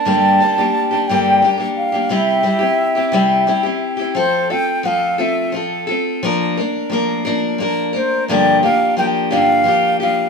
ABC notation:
X:1
M:6/8
L:1/16
Q:3/8=58
K:F
V:1 name="Flute"
a6 g2 z2 f2 | e8- e2 z2 | c2 g2 f2 e2 z4 | z8 z2 c2 |
d2 f2 g2 f4 f2 |]
V:2 name="Steel-string acoustic guitar"
[G,,D,G,B,DG]2 [G,B,DG] [G,B,DG]2 [G,B,DG] [G,,D,G,B,DG]2 [G,B,DG] [G,B,DG]2 [G,B,DG] | [C,G,CEG]2 [G,CEG] [CEG]2 [CEG] [C,G,CEG]2 [G,CEG] [CEG]2 [CEG] | [F,CFA]2 [CFA]2 [F,CFA]2 [F,CFA]2 [F,CFA]2 [CFA]2 | [F,B,DB]2 [B,DB]2 [F,B,DB]2 [F,B,DB]2 [F,B,DB]2 [B,DB]2 |
[G,,D,F,B,DG]2 [F,B,DG]2 [F,B,DG]2 [G,,D,F,B,DG]2 [F,B,DG]2 [F,B,DG]2 |]